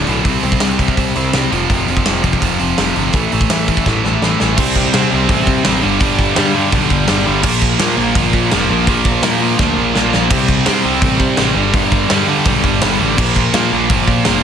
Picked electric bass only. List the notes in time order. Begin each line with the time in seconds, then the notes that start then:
0.07 B1
0.25 C2
0.43 C2
0.62 C2
0.97 C2
1.16 C2
1.33 C2
1.52 F1
1.70 F1
1.88 F1
2.08 F1
2.42 F1
2.61 F1
2.78 F1
2.97 G1
3.14 A1
3.33 A1
3.50 A1
3.86 A1
4.04 A1
4.22 A1
4.41 A1
4.58 C2
4.95 C3
5.13 C2
5.29 A1
5.47 C3
5.67 A1
5.84 G1
6.01 G1
6.38 G2
6.73 B1
6.90 G1
7.09 G1
7.27 G1
7.45 A#1
7.80 A#2
7.98 A#1
8.15 G1
8.33 A#2
8.53 F1
8.70 A#1
8.88 A#1
9.22 A#2
9.60 D2
9.77 A#1
9.96 A#1
10.15 A#1
10.31 C2
10.68 C3
10.85 C2
11.03 A1
11.19 C3
11.38 A1
11.56 G1
11.74 G1
12.11 G2
12.46 B1
12.64 G1
12.83 G1
13.01 A1
13.18 A#1
13.54 A#2
13.73 A#1
13.90 G1
14.08 A#2
14.27 F1